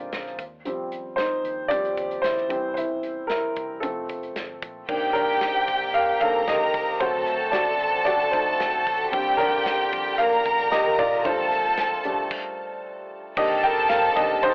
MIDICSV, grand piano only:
0, 0, Header, 1, 2, 480
1, 0, Start_track
1, 0, Tempo, 530035
1, 588, Time_signature, 4, 2, 24, 8
1, 13171, End_track
2, 0, Start_track
2, 0, Title_t, "Grand piano"
2, 0, Program_c, 0, 0
2, 0, Control_c, 0, 64, 127
2, 0, Note_on_c, 0, 50, 47
2, 0, Note_on_c, 0, 56, 45
2, 0, Note_on_c, 0, 60, 48
2, 0, Note_on_c, 0, 62, 58
2, 0, Note_on_c, 0, 63, 65
2, 0, Note_on_c, 0, 65, 66
2, 0, Note_on_c, 0, 70, 82
2, 0, Note_on_c, 0, 72, 81
2, 0, Note_on_c, 0, 74, 82
2, 308, Note_off_c, 0, 74, 0
2, 318, Note_off_c, 0, 65, 0
2, 359, Control_c, 0, 64, 0
2, 360, Note_off_c, 0, 50, 0
2, 361, Note_off_c, 0, 56, 0
2, 364, Note_off_c, 0, 60, 0
2, 365, Note_off_c, 0, 72, 0
2, 366, Note_off_c, 0, 63, 0
2, 368, Note_off_c, 0, 62, 0
2, 368, Note_off_c, 0, 70, 0
2, 517, Control_c, 0, 64, 127
2, 590, Note_on_c, 0, 53, 50
2, 597, Note_on_c, 0, 55, 48
2, 599, Note_on_c, 0, 60, 55
2, 908, Note_off_c, 0, 53, 0
2, 912, Note_off_c, 0, 55, 0
2, 913, Note_off_c, 0, 60, 0
2, 1050, Note_on_c, 0, 72, 83
2, 1074, Note_on_c, 0, 63, 62
2, 1518, Note_off_c, 0, 63, 0
2, 1525, Note_on_c, 0, 74, 100
2, 1538, Note_on_c, 0, 53, 48
2, 1544, Note_on_c, 0, 55, 43
2, 1547, Note_on_c, 0, 60, 52
2, 1550, Note_on_c, 0, 67, 82
2, 1554, Note_off_c, 0, 72, 0
2, 1759, Note_off_c, 0, 53, 0
2, 1763, Note_off_c, 0, 55, 0
2, 1764, Note_off_c, 0, 60, 0
2, 1996, Note_off_c, 0, 67, 0
2, 2009, Note_on_c, 0, 72, 96
2, 2032, Note_off_c, 0, 74, 0
2, 2042, Note_on_c, 0, 64, 64
2, 2257, Note_on_c, 0, 52, 50
2, 2264, Note_on_c, 0, 55, 46
2, 2270, Note_on_c, 0, 60, 55
2, 2283, Control_c, 0, 64, 0
2, 2457, Control_c, 0, 64, 127
2, 2465, Note_off_c, 0, 72, 0
2, 2483, Note_off_c, 0, 64, 0
2, 2483, Note_on_c, 0, 72, 76
2, 2515, Note_on_c, 0, 64, 66
2, 2942, Note_off_c, 0, 72, 0
2, 2959, Note_off_c, 0, 64, 0
2, 2962, Note_on_c, 0, 70, 79
2, 2993, Note_on_c, 0, 64, 62
2, 3428, Note_off_c, 0, 52, 0
2, 3431, Note_off_c, 0, 55, 0
2, 3434, Note_off_c, 0, 60, 0
2, 3438, Note_off_c, 0, 64, 0
2, 3444, Note_on_c, 0, 69, 71
2, 3462, Note_on_c, 0, 53, 51
2, 3464, Note_on_c, 0, 57, 46
2, 3471, Note_off_c, 0, 70, 0
2, 3471, Note_on_c, 0, 60, 58
2, 3483, Control_c, 0, 64, 0
2, 3651, Control_c, 0, 64, 127
2, 4141, Note_off_c, 0, 69, 0
2, 4150, Note_off_c, 0, 53, 0
2, 4151, Note_off_c, 0, 57, 0
2, 4157, Note_off_c, 0, 60, 0
2, 4422, Note_on_c, 0, 51, 50
2, 4425, Note_on_c, 0, 58, 43
2, 4431, Note_on_c, 0, 62, 55
2, 4441, Control_c, 0, 64, 0
2, 4624, Control_c, 0, 64, 127
2, 4647, Note_on_c, 0, 70, 101
2, 4652, Note_off_c, 0, 62, 0
2, 4666, Note_on_c, 0, 62, 76
2, 5104, Note_off_c, 0, 70, 0
2, 5110, Note_off_c, 0, 51, 0
2, 5111, Note_off_c, 0, 58, 0
2, 5114, Note_off_c, 0, 62, 0
2, 5381, Note_on_c, 0, 77, 105
2, 5390, Note_on_c, 0, 70, 75
2, 5607, Note_off_c, 0, 77, 0
2, 5613, Note_off_c, 0, 70, 0
2, 5619, Note_on_c, 0, 51, 45
2, 5620, Note_on_c, 0, 77, 102
2, 5624, Note_on_c, 0, 58, 38
2, 5628, Note_on_c, 0, 62, 48
2, 5633, Note_on_c, 0, 69, 73
2, 5840, Note_off_c, 0, 51, 0
2, 5842, Note_off_c, 0, 58, 0
2, 5844, Note_off_c, 0, 62, 0
2, 5854, Note_off_c, 0, 69, 0
2, 5868, Note_on_c, 0, 75, 92
2, 5872, Note_off_c, 0, 77, 0
2, 5883, Note_on_c, 0, 67, 61
2, 6323, Note_off_c, 0, 67, 0
2, 6339, Note_on_c, 0, 72, 89
2, 6344, Note_on_c, 0, 54, 49
2, 6348, Note_on_c, 0, 57, 46
2, 6353, Note_on_c, 0, 60, 50
2, 6354, Note_on_c, 0, 66, 64
2, 6362, Control_c, 0, 64, 0
2, 6363, Note_off_c, 0, 75, 0
2, 6531, Control_c, 0, 64, 127
2, 6798, Note_off_c, 0, 66, 0
2, 6808, Note_on_c, 0, 74, 83
2, 6830, Note_on_c, 0, 66, 61
2, 6839, Note_off_c, 0, 72, 0
2, 7030, Note_off_c, 0, 54, 0
2, 7032, Note_off_c, 0, 57, 0
2, 7035, Note_off_c, 0, 60, 0
2, 7276, Note_off_c, 0, 66, 0
2, 7277, Note_off_c, 0, 74, 0
2, 7291, Note_on_c, 0, 74, 88
2, 7312, Note_on_c, 0, 66, 65
2, 7347, Note_off_c, 0, 74, 0
2, 7366, Note_off_c, 0, 66, 0
2, 7528, Note_on_c, 0, 72, 78
2, 7544, Note_on_c, 0, 63, 56
2, 7983, Note_off_c, 0, 72, 0
2, 7992, Note_off_c, 0, 63, 0
2, 8257, Note_on_c, 0, 55, 59
2, 8262, Note_on_c, 0, 60, 52
2, 8268, Note_on_c, 0, 62, 57
2, 8282, Control_c, 0, 64, 0
2, 8440, Control_c, 0, 64, 127
2, 8487, Note_on_c, 0, 70, 108
2, 8498, Note_off_c, 0, 62, 0
2, 8511, Note_on_c, 0, 62, 84
2, 8581, Note_off_c, 0, 55, 0
2, 8584, Note_off_c, 0, 60, 0
2, 8943, Note_off_c, 0, 70, 0
2, 8956, Note_off_c, 0, 62, 0
2, 9219, Note_on_c, 0, 77, 102
2, 9235, Note_on_c, 0, 70, 88
2, 9678, Note_off_c, 0, 70, 0
2, 9705, Note_on_c, 0, 75, 94
2, 9715, Note_on_c, 0, 67, 77
2, 9717, Note_off_c, 0, 77, 0
2, 9929, Note_off_c, 0, 75, 0
2, 9934, Note_off_c, 0, 67, 0
2, 9949, Note_on_c, 0, 74, 99
2, 9958, Note_on_c, 0, 65, 70
2, 10171, Note_off_c, 0, 74, 0
2, 10176, Note_off_c, 0, 65, 0
2, 10183, Note_on_c, 0, 55, 53
2, 10186, Note_on_c, 0, 72, 82
2, 10190, Note_on_c, 0, 57, 48
2, 10192, Note_on_c, 0, 62, 55
2, 10194, Note_on_c, 0, 65, 70
2, 10199, Control_c, 0, 64, 0
2, 10332, Control_c, 0, 64, 127
2, 10899, Note_off_c, 0, 55, 0
2, 10901, Note_off_c, 0, 57, 0
2, 10903, Note_off_c, 0, 62, 0
2, 10912, Note_on_c, 0, 55, 50
2, 10915, Note_on_c, 0, 57, 46
2, 10917, Note_on_c, 0, 62, 54
2, 11126, Note_off_c, 0, 55, 0
2, 11127, Note_off_c, 0, 57, 0
2, 11128, Note_off_c, 0, 62, 0
2, 11590, Note_off_c, 0, 72, 0
2, 11593, Note_off_c, 0, 65, 0
2, 12103, Note_on_c, 0, 51, 51
2, 12108, Note_on_c, 0, 58, 50
2, 12111, Note_on_c, 0, 75, 97
2, 12115, Note_on_c, 0, 62, 56
2, 12116, Note_on_c, 0, 67, 77
2, 12117, Control_c, 0, 64, 0
2, 12285, Control_c, 0, 64, 127
2, 12332, Note_off_c, 0, 75, 0
2, 12335, Note_off_c, 0, 67, 0
2, 12345, Note_on_c, 0, 79, 87
2, 12356, Note_on_c, 0, 70, 78
2, 12568, Note_off_c, 0, 79, 0
2, 12574, Note_off_c, 0, 70, 0
2, 12578, Note_on_c, 0, 77, 94
2, 12590, Note_on_c, 0, 70, 74
2, 12805, Note_off_c, 0, 77, 0
2, 12808, Note_off_c, 0, 51, 0
2, 12809, Note_off_c, 0, 58, 0
2, 12811, Note_off_c, 0, 70, 0
2, 12815, Note_off_c, 0, 62, 0
2, 12820, Note_on_c, 0, 75, 93
2, 12821, Note_on_c, 0, 51, 52
2, 12823, Note_on_c, 0, 58, 44
2, 12829, Note_on_c, 0, 62, 55
2, 12835, Note_on_c, 0, 67, 68
2, 13039, Note_off_c, 0, 51, 0
2, 13040, Note_off_c, 0, 58, 0
2, 13043, Note_off_c, 0, 62, 0
2, 13054, Note_off_c, 0, 67, 0
2, 13068, Note_on_c, 0, 72, 109
2, 13070, Note_off_c, 0, 75, 0
2, 13081, Note_on_c, 0, 63, 83
2, 13171, Note_off_c, 0, 63, 0
2, 13171, Note_off_c, 0, 72, 0
2, 13171, End_track
0, 0, End_of_file